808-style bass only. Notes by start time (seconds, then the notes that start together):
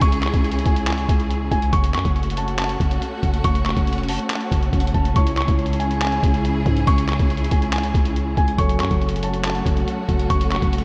0.02 C#2
0.34 C#2
0.66 C#2
1.09 C#2
1.51 C#2
1.73 F#1
1.94 F#2
2.05 F#1
2.80 F#1
3.23 F#1
3.44 F#1
3.77 F#1
3.98 E1
4.09 F#1
4.52 F#1
4.73 F#1
4.94 F#1
5.16 C#2
5.48 C#2
6.23 C#2
6.66 G#2
6.87 C#2
7.19 C#2
7.51 C#2
7.94 C#2
8.37 C#2
8.59 F#1
8.80 F#2
8.91 F#1
9.66 F#1
10.09 F#1
10.30 F#1
10.62 F#1